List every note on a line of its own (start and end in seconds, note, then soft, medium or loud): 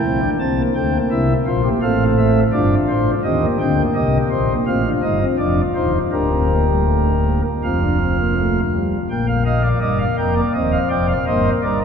0.00 0.20 E4 medium
0.00 0.30 G5 medium
0.05 0.26 A#1 medium
0.05 0.27 A#2 medium
0.05 0.20 C4 medium
0.21 0.37 D4 medium
0.40 0.62 C2 medium
0.40 0.62 C3 medium
0.40 1.01 C4 medium
0.40 0.62 A5 medium
0.58 0.73 A#3 medium
0.75 0.97 D2 medium
0.75 0.97 D3 medium
0.75 0.91 A3 medium
0.75 0.97 G5 medium
0.93 1.70 A#3 medium
1.11 1.33 C2 medium
1.11 1.33 C3 medium
1.11 1.33 E4 medium
1.11 1.33 E5 medium
1.46 1.68 A#1 medium
1.46 1.68 A#2 medium
1.46 1.61 F4 medium
1.46 1.68 C5 medium
1.64 1.79 G4 medium
1.82 2.43 A1 medium
1.82 2.43 A2 medium
1.82 2.43 C4 medium
1.82 2.43 A4 medium
1.82 2.04 F5 medium
2.18 2.40 E5 medium
2.53 2.75 G1 medium
2.53 2.75 G2 medium
2.53 3.14 D4 medium
2.53 3.14 F4 medium
2.53 2.75 D5 medium
2.89 3.11 A1 medium
2.89 3.11 A2 medium
2.89 3.11 C5 medium
3.24 3.46 D#2 medium
3.24 3.46 D#3 medium
3.24 3.40 C4 medium
3.24 3.85 G4 medium
3.24 3.46 D#5 medium
3.42 3.57 A#3 medium
3.59 3.82 D2 medium
3.59 3.82 D3 medium
3.59 3.75 C4 medium
3.59 3.82 G5 medium
3.77 4.54 A#3 medium
3.95 4.17 C2 medium
3.95 4.18 C3 medium
3.95 4.57 G4 medium
3.95 4.17 D#5 medium
4.30 4.53 A#1 medium
4.30 4.53 A#2 medium
4.30 4.53 C5 medium
4.67 4.89 A1 medium
4.67 4.89 A2 medium
4.67 4.82 C4 medium
4.67 5.92 F4 medium
4.67 4.89 F5 medium
4.85 5.00 D4 medium
5.02 5.25 G1 medium
5.02 5.25 G2 medium
5.02 5.18 D#4 medium
5.02 5.25 D#5 medium
5.21 5.36 C4 medium
5.38 5.61 F1 medium
5.38 5.61 F2 medium
5.38 5.61 D4 medium
5.38 5.61 D5 medium
5.75 5.98 D#1 medium
5.75 5.98 D#2 medium
5.75 5.98 D#4 medium
5.75 5.98 C5 medium
6.12 7.42 D1 medium
6.12 7.41 D2 medium
6.12 6.28 D4 medium
6.12 7.42 G4 medium
6.12 7.41 A#4 medium
6.32 6.47 C4 medium
6.50 6.66 A#3 medium
6.68 6.84 G3 medium
6.88 7.11 A3 medium
7.26 7.49 A#3 soft
7.63 8.59 F1 medium
7.63 8.60 F2 medium
7.63 7.79 C4 medium
7.63 8.59 F4 medium
7.63 8.59 F5 medium
7.82 7.98 D4 medium
8.01 8.17 C4 medium
8.19 8.35 A#3 medium
8.36 8.60 A3 medium
8.74 8.97 G3 medium
9.10 9.73 A#1 medium
9.10 9.73 A#2 medium
9.10 10.35 A#3 medium
9.10 9.26 G5 medium
9.28 9.43 F5 medium
9.45 9.62 D#5 medium
9.45 9.68 F5 medium
9.63 9.79 D5 medium
9.81 10.04 G1 medium
9.81 10.04 G2 medium
9.81 10.04 D5 medium
9.81 9.98 D#5 medium
9.99 10.16 F5 medium
10.17 10.41 F1 medium
10.17 10.41 F2 medium
10.17 10.40 A#4 medium
10.17 10.34 G5 medium
10.36 10.53 D5 medium
10.54 10.77 D#1 medium
10.54 10.77 D#2 medium
10.54 11.18 C4 medium
10.54 10.78 D#5 medium
10.72 10.89 F5 medium
10.90 11.13 F1 medium
10.90 11.13 F2 medium
10.90 11.13 D5 medium
10.90 11.07 G5 medium
11.08 11.25 F5 medium
11.26 11.50 G1 medium
11.26 11.50 G2 medium
11.26 11.85 A#3 medium
11.26 11.50 C5 medium
11.26 11.50 D#5 medium
11.63 11.85 G1 medium
11.63 11.85 G2 medium
11.63 11.85 A#4 medium
11.63 11.79 D5 medium